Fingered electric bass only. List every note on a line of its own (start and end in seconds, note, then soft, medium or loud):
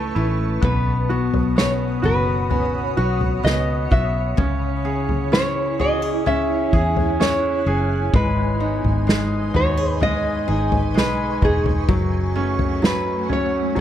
0.00 0.12 C#2 medium
0.16 0.60 A1 medium
0.63 1.29 B1 medium
1.33 2.00 B1 medium
2.04 2.93 F#1 medium
2.97 3.41 B1 medium
3.44 3.88 C#2 medium
3.92 4.35 B1 medium
4.38 6.45 C#2 medium
6.73 7.63 E2 medium
7.66 8.10 F#1 medium
8.14 8.80 G#1 loud
8.84 9.50 G#1 medium
9.55 10.44 D#2 medium
10.49 10.95 G#1 medium
10.95 11.38 B1 medium
11.42 11.85 E1 medium
11.89 13.80 F#1 medium